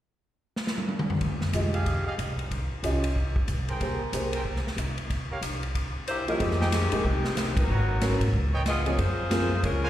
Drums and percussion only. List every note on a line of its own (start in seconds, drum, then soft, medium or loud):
0.56 snare medium
0.67 snare medium
0.78 high tom medium
0.88 high tom medium
0.99 mid tom medium
1.10 floor tom medium
1.21 kick soft
1.21 ride soft
1.41 snare soft
1.53 hi-hat pedal medium
1.53 ride medium
1.74 ride soft
1.86 kick soft
1.86 ride soft
2.19 hi-hat pedal soft
2.19 ride medium
2.39 ride soft
2.51 kick soft
2.51 ride soft
2.84 hi-hat pedal medium
2.84 ride medium
3.04 ride medium
3.16 kick soft
3.36 kick medium
3.48 hi-hat pedal soft
3.48 ride soft
3.68 ride soft
3.81 kick soft
3.81 ride soft
4.13 hi-hat pedal medium
4.13 ride medium
4.33 ride medium
4.45 kick soft
4.56 snare soft
4.67 snare soft
4.78 hi-hat pedal soft
4.78 ride medium
4.98 ride soft
5.10 kick soft
5.10 ride soft
5.42 hi-hat pedal medium
5.42 ride medium
5.63 ride soft
5.75 kick soft
5.75 ride soft
6.07 hi-hat pedal medium
6.07 ride medium
6.28 ride soft
6.40 kick soft
6.40 ride soft
6.51 snare soft
6.61 snare soft
6.72 snare medium
6.72 hi-hat pedal soft
6.72 ride medium
6.92 ride medium
7.05 kick soft
7.25 snare medium
7.37 snare medium
7.37 hi-hat pedal medium
7.37 ride medium
7.57 kick medium
7.57 ride medium
8.01 snare medium
8.01 hi-hat pedal medium
8.01 ride medium
8.21 ride medium
8.34 kick soft
8.66 snare medium
8.66 hi-hat pedal soft
8.66 ride medium
8.86 ride soft
8.98 kick soft
8.98 ride medium
9.31 snare medium
9.31 hi-hat pedal medium
9.31 ride medium
9.63 kick soft
9.63 ride medium